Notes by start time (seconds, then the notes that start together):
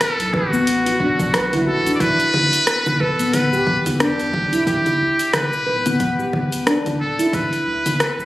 0.01 A4, cross-stick, open hi-hat, shaker
0.19 B1, open hi-hat, shaker
0.34 A1 F#4 B4, kick, low conga
0.53 B3, udu, shaker
0.67 open hi-hat, shaker
0.86 F#4, open hi-hat, shaker
1.00 F#1 D4, kick
1.19 B1, kick, open hi-hat, shaker
1.34 B4, cross-stick, open hi-hat, shaker
1.53 E4, open hi-hat, udu, low conga, shaker
1.67 A1 F#4 A4
1.86 D4, open hi-hat, udu, shaker
1.95 D5
2.00 E1 E4 B4, kick, open hi-hat, shaker
2.20 open hi-hat, shaker
2.33 udu, low conga
2.53 open hi-hat, shaker
2.67 cross-stick, open hi-hat, shaker
2.86 E1, low conga, shaker
3.00 D1 A4 B4, kick
3.19 B3, open hi-hat, shaker
3.33 B4, open hi-hat, low conga, shaker
3.53 G4, udu, shaker
3.67 E1, kick
3.86 E2, open hi-hat, low conga, shaker
4.00 D4 G4, cross-stick, open hi-hat, shaker
4.19 open hi-hat, udu, shaker
4.33 B1, kick, low conga
4.53 E4, open hi-hat, shaker
4.67 E1 E4 G4, kick, open hi-hat, shaker
4.86 open hi-hat, low conga, shaker
5.01 udu
5.19 open hi-hat, shaker
5.33 B4, cross-stick, open hi-hat, low conga, shaker
5.53 E1, shaker
5.67 D1 B4
5.86 B3, open hi-hat, low conga, shaker
6.00 kick, open hi-hat, shaker
6.19 G4, shaker
6.33 kick, low conga
6.52 open hi-hat, udu, shaker
6.67 D4, cross-stick, open hi-hat, shaker
6.86 open hi-hat, udu, low conga, shaker
7.00 D1 A4
7.19 E4, open hi-hat, shaker
7.33 A1 E4 B4, kick, open hi-hat, low conga, shaker
7.53 open hi-hat, shaker
7.67 udu
7.86 open hi-hat, low conga, shaker
8.00 cross-stick, open hi-hat, shaker
8.19 A1, shaker